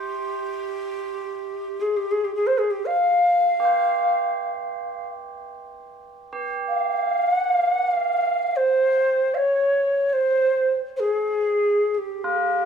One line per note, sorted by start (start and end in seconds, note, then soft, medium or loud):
0.00 1.83 G4 medium
0.00 3.64 C5 soft
1.81 1.98 G#4 medium
1.97 2.13 G4 medium
2.11 2.26 G#4 medium
2.25 2.34 G4 medium
2.35 2.48 G#4 medium
2.47 2.60 C5 medium
2.58 2.72 G#4 medium
2.71 2.87 G4 medium
2.86 5.07 F5 medium
3.60 6.31 G4 medium
3.65 6.38 C5 soft
6.33 12.65 G4 medium
6.68 7.35 F5 medium
7.35 7.53 F#5 medium
7.53 7.73 F5 medium
7.73 7.91 F#5 medium
7.91 8.58 F5 medium
8.56 9.36 C5 medium
9.34 10.09 C#5 medium
9.34 9.38 F5 medium
10.09 10.74 C5 medium
10.09 10.14 C#5 medium
10.96 11.94 G#4 medium
10.96 11.01 C5 medium
11.94 12.65 G4 medium
11.94 12.00 G#4 soft
12.24 12.65 F4 medium